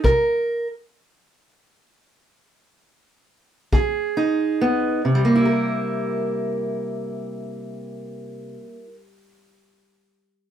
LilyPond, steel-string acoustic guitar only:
\new Staff \with { instrumentName = "Steel-string acoustic guitar" } { \time 12/8 \key c \mixolydian \tempo 4. = 44 << { bes'4 r2. r8 aes'8 ees'8 b8 | <g bes e' bes'>1. | } \\ { c4 r2. r8 des4 r8 | c1. | } >> }